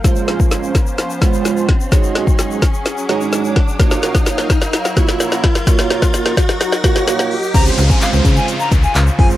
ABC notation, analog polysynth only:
X:1
M:4/4
L:1/16
Q:1/4=128
K:Db
V:1 name="Analog polysynth"
[A,DFc]6 z4 [A,DFc]4 z2 | [A,EGd]6 z4 [A,EGd]4 z2 | [B,FGd]6 z4 [B,FGd]4 z2 | [B,FGd]6 z4 [B,FGd]4 z2 |
[A,CDFc]2 z [A,CDFc]6 z4 z [A,CDFc] z |]